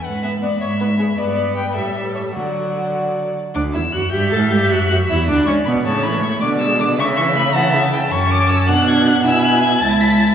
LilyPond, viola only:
\new Staff \with { instrumentName = "Viola" } { \time 6/8 \key e \mixolydian \tempo 4. = 105 r8 b8 b8 r8 b8 b8 | \key d \major b4. g4. | fis2~ fis8 r8 | d'8 e'8 fis'8 g'8 a'8 g'8 |
fis'8 fis'8 e'8 d'8 cis'8 b8 | cis8 e8 a8 d8 gis8 d8 | cis8 e8 a8 e8 cis8 e8 | \key a \major cis'4. d'4. |
e'4. e'4. | }